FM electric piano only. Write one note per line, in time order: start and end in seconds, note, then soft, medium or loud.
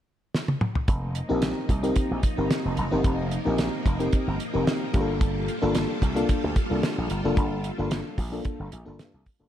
1.29 1.65 C4 medium
1.29 1.65 D#4 medium
1.29 1.65 G4 medium
1.29 1.65 A#4 loud
1.83 2.19 C4 loud
1.83 2.19 D#4 medium
1.83 2.19 G4 medium
1.83 2.19 A#4 loud
2.37 2.73 C4 medium
2.37 2.73 D#4 medium
2.37 2.73 G4 medium
2.37 2.73 A#4 medium
2.91 3.27 C4 medium
2.91 3.27 D#4 medium
2.91 3.28 G4 medium
2.91 3.28 A#4 loud
3.45 3.81 C4 medium
3.45 3.81 D#4 medium
3.45 3.81 G4 medium
3.45 3.82 A#4 medium
3.99 4.35 C4 medium
3.99 4.35 D#4 medium
3.99 4.35 G4 medium
3.99 4.36 A#4 medium
4.54 4.89 C4 medium
4.54 4.89 D#4 medium
4.54 4.89 G4 medium
4.54 4.90 A#4 medium
4.93 5.47 A#3 medium
4.93 5.48 D4 medium
4.93 5.48 F4 medium
4.93 5.01 G4 medium
5.01 5.51 A4 loud
5.62 5.97 A#3 loud
5.62 5.97 D4 loud
5.62 5.98 F4 medium
5.62 5.98 A4 loud
6.15 6.51 A#3 loud
6.15 6.51 D4 medium
6.15 6.52 F4 loud
6.15 6.52 A4 loud
6.70 7.06 A#3 medium
6.70 7.06 D4 medium
6.70 7.06 F4 medium
6.70 7.06 A4 medium
7.24 7.60 A#3 medium
7.24 7.60 D4 medium
7.24 7.60 F4 medium
7.24 7.60 A4 loud
7.78 8.14 A#3 medium
7.78 8.14 D4 medium
7.78 8.14 F4 medium
7.78 8.14 A4 medium
8.32 8.68 A#3 medium
8.32 8.68 D4 medium
8.32 8.68 F4 medium
8.32 8.68 A4 medium
8.85 9.21 A#3 medium
8.85 9.22 D4 medium
8.85 9.22 F4 medium
8.85 9.22 A4 medium
9.39 9.48 A#3 medium
9.39 9.48 D4 medium
9.39 9.48 F4 medium
9.39 9.48 A4 loud